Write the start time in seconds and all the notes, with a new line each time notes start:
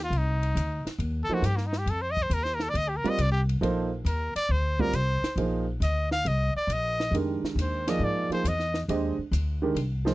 0.03 F4
0.10 C2, ride
0.17 D#4
0.43 ride
0.55 D2, hi-hat pedal, ride
0.85 muted upright bass stroke, snare, ride
0.98 D#2, ride
1.24 A4
1.28 F3 A#3 D#4 A4 C5, muted upright bass stroke
1.34 F#4
1.42 G2 G4, hi-hat pedal, ride
1.56 A#3, snare
1.67 D#4
1.73 snare
1.78 G4
1.86 F2 A4, ride
2.01 C5
2.11 D#5
2.17 kick
2.22 C5
2.30 D#2 A#4, hi-hat pedal, ride
2.43 C5, snare
2.54 A#4
2.60 A4, snare
2.69 D5
2.74 D2 D#5, ride
2.88 G4
2.97 A#4
3.04 G3 C4 F4 A#4 D5, muted upright bass stroke, ride
3.09 D#5
3.18 C2 D5, hi-hat pedal, ride
3.32 G4
3.49 ride
3.61 A#1 F3 A#3 D#4 A4 C5, ride
4.05 D#2 A#4, hi-hat pedal, ride
4.35 D5, muted upright bass stroke, ride
4.49 D2 C5
4.79 G3 C4 F4 A#4 D5, kick
4.93 C2 C5, hi-hat pedal, ride
5.22 muted upright bass stroke, snare, ride
5.36 A#1 F3 A#3 D#4 G#4 C5, ride
5.80 D2 D#5, hi-hat pedal, ride
6.11 F5, snare
6.25 C2 D#5, ride
6.55 D5, muted upright bass stroke
6.67 A#1, hi-hat pedal, ride
6.73 D#5
7.00 snare
7.11 F2 D#3 G#3 D4 G4 A#4, ride
7.43 muted upright bass stroke, snare
7.55 D#2, hi-hat pedal, ride
7.61 C5
7.87 F3 A#3 D#4 G#4 D5 D#5, snare, ride
7.99 G#2
8.04 D5
8.29 F3 A#3 D#4 G#4 C5, muted upright bass stroke, ride
8.44 E2 D#5, hi-hat pedal, ride
8.59 snare
8.74 snare
8.88 D#2 G#3 D4 G4 C5 D#5, ride
9.18 muted upright bass stroke
9.31 D2, hi-hat pedal, ride
9.62 D#3 G#3 D4 G4 A#4
9.75 C2, ride
10.05 F3 A#3 D#4 G#4 C5, snare